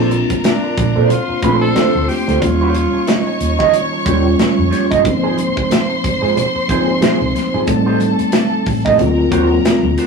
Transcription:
Already playing: fingered electric bass A#1, tine electric piano A#3 C4 D4 F4, string section A#4 A#5
0.00 clean electric guitar A4 C5
0.11 muted clean electric guitar stroke, closed hi-hat, muted conga
0.30 muted clean electric guitar stroke, kick, closed hi-hat
0.44 tenor saxophone D4, muted clean electric guitar stroke, snare, closed hi-hat, high conga
0.64 muted clean electric guitar stroke
0.77 fingered electric bass A#1, kick, closed hi-hat
0.96 fingered electric bass A#2, clean electric guitar D4 A4 C5
1.10 tenor saxophone F4, string section C5 C6, muted clean electric guitar stroke, closed hi-hat, muted conga, low conga
1.29 muted clean electric guitar stroke, muted fingered electric bass stroke
1.42 fingered electric bass A#1, tine electric piano A3 C4 D4 F4, clean electric guitar D4 A4 C5, kick, closed hi-hat, muted conga
1.61 tenor saxophone A4, muted clean electric guitar stroke
1.75 clean electric guitar D4 A4 C5, muted fingered electric bass stroke, snare, closed hi-hat, high conga
1.95 fingered electric bass D2, high conga
2.08 tenor saxophone G4, muted clean electric guitar stroke, snare, open hi-hat
2.28 fingered electric bass D2, clean electric guitar D4 A4 C5, snare, closed hi-hat, high conga
2.41 fingered electric bass D#2, tine electric piano F#3 A#3 C#4 F4, tenor saxophone F4, string section C#5 C#6, muted clean electric guitar stroke, kick, closed hi-hat, muted conga
2.47 tine electric piano G3
2.61 clean electric guitar F4 G4 C#5
2.74 muted clean electric guitar stroke, closed hi-hat, muted conga
2.93 muted fingered electric bass stroke, muted clean electric guitar stroke
3.07 tenor saxophone D#4, muted clean electric guitar stroke, snare, closed hi-hat, high conga
3.27 muted clean electric guitar stroke
3.41 fingered electric bass D#2, closed hi-hat
3.59 fingered electric bass D#3, clean electric guitar F4 G4 D#5, kick
3.73 muted clean electric guitar stroke, closed hi-hat, muted conga
3.93 muted clean electric guitar stroke
4.05 fingered electric bass D#2, tine electric piano G3 A#3 C#4 F4, clean electric guitar F4 G4 C#5, kick, closed hi-hat, muted conga
4.26 muted clean electric guitar stroke
4.39 muted clean electric guitar stroke, snare, closed hi-hat, high conga
4.57 fingered electric bass F2, muted clean electric guitar stroke, high conga
4.71 clean electric guitar F4 G4 C#5, snare, closed hi-hat
4.91 fingered electric bass G1, clean electric guitar F4 G4 D#5, kick, closed hi-hat, high conga
5.04 fingered electric bass G#1, tine electric piano F3 A#3 C4 D#4, string section C5 C6, muted clean electric guitar stroke, kick, closed hi-hat, muted conga
5.23 clean electric guitar F4 G#4 C5
5.37 muted clean electric guitar stroke, closed hi-hat, muted conga
5.56 muted clean electric guitar stroke, muted fingered electric bass stroke, kick
5.70 muted clean electric guitar stroke, snare, closed hi-hat, high conga
5.89 muted clean electric guitar stroke
6.04 fingered electric bass G#1, kick, closed hi-hat
6.21 fingered electric bass G#2, clean electric guitar F4 G#4 C5
6.36 muted clean electric guitar stroke, closed hi-hat, muted conga, low conga
6.55 muted fingered electric bass stroke, muted clean electric guitar stroke
6.68 fingered electric bass G#1, tine electric piano F3 A#3 C4 D#4, clean electric guitar F4 G#4 C5, kick, closed hi-hat, muted conga
6.88 muted clean electric guitar stroke
7.01 clean electric guitar F4 G#4 C5, muted fingered electric bass stroke, snare, closed hi-hat, high conga
7.21 fingered electric bass C2, high conga
7.35 muted clean electric guitar stroke, snare, closed hi-hat
7.54 fingered electric bass G#1, clean electric guitar F4 G#4 C5, high conga
7.67 fingered electric bass A1, tine electric piano G3 A3 C4 D#4, string section A4 A5, muted clean electric guitar stroke, kick, closed hi-hat, muted conga
7.86 clean electric guitar D#4 G4 C5
8.00 muted clean electric guitar stroke, closed hi-hat, muted conga
8.19 muted clean electric guitar stroke, muted fingered electric bass stroke, closed hi-hat
8.32 muted clean electric guitar stroke, snare, closed hi-hat, high conga
8.53 muted clean electric guitar stroke
8.66 fingered electric bass A1, kick, open hi-hat
8.85 fingered electric bass A2, clean electric guitar D#4 G4 D#5, kick
8.97 fingered electric bass D2, tine electric piano F#3 A#3 C4 F4, string section A#4 A#5, muted clean electric guitar stroke, closed hi-hat, muted conga, low conga
9.18 muted clean electric guitar stroke
9.31 fingered electric bass D#2, tine electric piano F#3 A#3 C4 F4, clean electric guitar D4 F#4 C5, kick, closed hi-hat
9.51 muted clean electric guitar stroke
9.65 muted clean electric guitar stroke, snare, closed hi-hat, high conga
9.83 fingered electric bass D2, muted clean electric guitar stroke, high conga
9.98 clean electric guitar D4 F#4 C5, snare, closed hi-hat

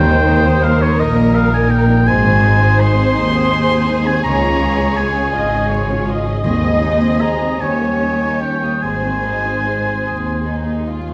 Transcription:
Already playing: double bass section D#2, cello section D#2, timpani D#3, harp D#3, violin section G3 D#4 A#4, viola section C5, oboe G5
0.11 harp A#3, violin section A#3
0.28 harp D#4, violin section D#4
0.45 violin section A#3, harp D#5
0.62 violin section G3, harp A#4, oboe F5
0.80 violin section A#3, oboe C#5, harp D#5
0.98 double bass section A#1, cello section A#2, violin section D#4, viola section A#4, oboe D#5, harp D#6
1.16 violin section A#3, harp A#5
1.33 violin section G3, harp D#5, oboe F5
1.52 violin section A#3, harp D#4, oboe G#5
1.69 harp A#3, violin section D#4, oboe G5
1.88 violin section A#3, harp D#4
2.05 double bass section G#1, harp G#2, cello section G#2, violin section G#3 G#4, viola section C5, oboe G#5
2.23 harp D#3, violin section C4
2.40 harp G#3, violin section D#4
2.60 violin section C4, harp D#4
2.78 violin section G#3, harp D#5, oboe C6
2.96 violin section C4, harp G#4
3.13 double bass section D#2, cello section D#2, violin section D#4, harp D#5
3.32 violin section C4, harp D#6
3.50 violin section G#3, harp G#4
3.69 violin section C4, harp D#4
3.86 harp G#3, violin section D#4
4.05 harp D#3, violin section C4, oboe G#5
4.24 double bass section C#2, cello section C#2, harp C#3, violin section G#3 C#4, viola section C#5, oboe A#5
4.43 violin section C#4, harp C#4
4.62 harp G#3, violin section F4
4.79 violin section C#4, harp F4
4.97 violin section G#3, harp C#5, oboe G#5
5.16 violin section C#4, harp G#4
5.35 double bass section G#1, cello section G#2, violin section F4, viola section D#5, harp F5
5.52 violin section C#4, harp C#6
5.71 violin section G#3, harp G#4, viola section C#5
5.90 violin section C#4, harp F4
6.07 harp G#3, violin section F4, viola section D#5
6.25 violin section C#4, harp C#4
6.44 cello section D#2, double bass section D#2, harp D#3, timpani D#3, violin section G#3 C4 G#4, oboe D#5
6.63 harp G#3, violin section C4
6.82 harp D#4, violin section D#4
7.01 violin section C4, harp C5
7.21 violin section G#3, harp G#4, oboe A#5
7.41 violin section C4, harp D#5
7.60 cello section D#2, double bass section D#2, harp D#3, violin section G3 C#4 G4, viola section C#5, oboe G#5
7.81 harp G3, violin section A#3
8.01 violin section C#4, harp D#4
8.21 violin section D#4, harp C#5
8.42 violin section C#4, harp G4, oboe G5
8.62 violin section A#3, harp D#5
8.82 double bass section G#1, cello section G#2, harp G#2, violin section G#3 C4 G#4, viola section C5, oboe G#5
9.04 harp D#3, violin section C4
9.23 harp G#3, violin section D#4
9.45 violin section C4, harp D#4
9.65 violin section G#3, harp C5
9.86 violin section C4, harp G#4
10.06 cello section D#2, double bass section D#2, violin section C4, harp D#5
10.26 harp C6
10.46 violin section D#4, harp G#4
10.66 harp D#4
10.87 harp G#3, violin section F4
11.08 harp D#3

